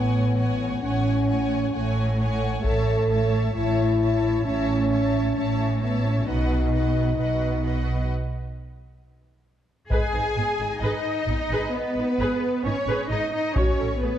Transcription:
Already playing: A1 A2 B3 C#5 F#5 G#5
0.36 C#5 F#5 G#5
0.81 A1 A2 C#4 C#5 F#5 G#5
1.28 C#5 F#5 G#5
1.73 A1 A2 A3 C#5 F#5 G#5
2.19 C#5 F#5 G#5
2.63 A1 A2 A4 C#5 E5 A5, taiko
3.11 C#5 E5 A5
3.53 A1 A2 E4 C#5 E5 A5
4.01 C#5 E5 A5
4.45 A1 A2 C#4 C#5 E5 A5
4.91 C#5 E5 A5
5.35 A1 A2 C#4 C#5 E5 A5
5.82 B3 C#5 E5 A5
6.06 C#4
6.25 B1 B2 D#4 B4 D#5 F#5
6.73 B4 D#5 F#5
7.17 B1 B2 B4 D#5 F#5
7.64 B4 D#5 F#5
9.90 G#1 G#4 B4 D#5 G#5, taiko
10.14 G#1 D#4 G#4
10.36 G#1 B3 D#4
10.59 G#1 D#4 G#4
10.81 G#1 D#4 G#4 B4 D#5
11.27 G#1 B3 D#4, taiko
11.50 G#1 G#4 B4
11.73 B3 B4 D#5
11.96 G#1 B3 D#4
12.19 G#1 G#4 B4
12.64 G#1 B3 C#4 D#4 C#5
12.87 G#1 G#4 B4
13.09 G#1 D#4 G#4 D#5
13.33 D#4 D#5
13.54 A1 C#4 F#4 C#5, taiko
13.79 A1 C#4 A4
14.00 A1 A3 B3 G#4 B4

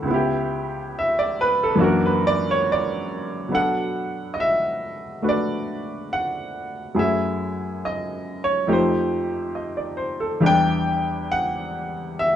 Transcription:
Already playing: A4
0.03 C#2 C#3
0.08 B3 E4
0.14 G4
0.99 E5
1.19 D5
1.41 B4
1.63 A4
1.75 F#2 E3 A#3 D4
1.81 F#4 A#4
2.06 B4
2.27 D5
2.51 C#5
2.72 D5
3.49 B2 F#3 B3 D4
3.54 A4 F#5
4.34 D#5
4.40 E5
5.22 A3 D4 F#4 B4
5.29 D5
6.13 F#5
6.95 F#2 F#3 A3 E4 G#4
6.99 E5
7.85 D#5
8.44 C#5
8.67 F2 F3 A3 D#4 G4
8.72 C5
9.55 D#5
9.77 D5
9.97 C5
10.20 A4
10.40 E2 E3 G3 D4 G4
10.46 G5
11.32 F#5
12.19 E5

